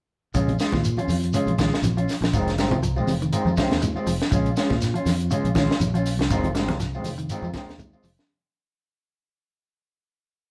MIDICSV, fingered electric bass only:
0, 0, Header, 1, 3, 480
1, 0, Start_track
1, 0, Tempo, 496278
1, 336, Time_signature, 4, 2, 24, 8
1, 10164, End_track
2, 0, Start_track
2, 0, Title_t, "Fingered electric bass"
2, 0, Program_c, 0, 33
2, 332, Note_on_c, 0, 34, 76
2, 560, Note_off_c, 0, 34, 0
2, 709, Note_on_c, 0, 46, 74
2, 936, Note_off_c, 0, 46, 0
2, 1041, Note_on_c, 0, 41, 77
2, 1275, Note_off_c, 0, 41, 0
2, 1412, Note_on_c, 0, 34, 73
2, 1648, Note_off_c, 0, 34, 0
2, 1762, Note_on_c, 0, 34, 79
2, 1997, Note_off_c, 0, 34, 0
2, 2135, Note_on_c, 0, 34, 77
2, 2245, Note_off_c, 0, 34, 0
2, 2258, Note_on_c, 0, 29, 83
2, 2630, Note_off_c, 0, 29, 0
2, 2630, Note_on_c, 0, 36, 85
2, 2966, Note_off_c, 0, 36, 0
2, 2966, Note_on_c, 0, 29, 77
2, 3199, Note_off_c, 0, 29, 0
2, 3335, Note_on_c, 0, 41, 84
2, 3444, Note_off_c, 0, 41, 0
2, 3585, Note_on_c, 0, 39, 87
2, 3815, Note_off_c, 0, 39, 0
2, 3931, Note_on_c, 0, 29, 75
2, 4061, Note_off_c, 0, 29, 0
2, 4175, Note_on_c, 0, 34, 85
2, 4403, Note_off_c, 0, 34, 0
2, 4550, Note_on_c, 0, 46, 76
2, 4776, Note_off_c, 0, 46, 0
2, 4890, Note_on_c, 0, 41, 81
2, 5119, Note_off_c, 0, 41, 0
2, 5262, Note_on_c, 0, 34, 77
2, 5492, Note_off_c, 0, 34, 0
2, 5611, Note_on_c, 0, 34, 94
2, 5978, Note_off_c, 0, 34, 0
2, 5978, Note_on_c, 0, 36, 80
2, 6084, Note_off_c, 0, 36, 0
2, 6097, Note_on_c, 0, 29, 81
2, 6464, Note_off_c, 0, 29, 0
2, 6464, Note_on_c, 0, 36, 84
2, 6805, Note_off_c, 0, 36, 0
2, 6805, Note_on_c, 0, 29, 81
2, 7036, Note_off_c, 0, 29, 0
2, 7177, Note_on_c, 0, 41, 92
2, 7283, Note_off_c, 0, 41, 0
2, 7423, Note_on_c, 0, 39, 93
2, 7652, Note_off_c, 0, 39, 0
2, 7769, Note_on_c, 0, 29, 80
2, 7898, Note_off_c, 0, 29, 0
2, 10164, End_track
3, 0, Start_track
3, 0, Title_t, "Muted fingered electric bass strokes"
3, 3828, Note_on_c, 9, 29, 34
3, 3925, Note_off_c, 9, 29, 0
3, 7662, Note_on_c, 9, 29, 33
3, 7759, Note_off_c, 9, 29, 0
3, 10164, End_track
0, 0, End_of_file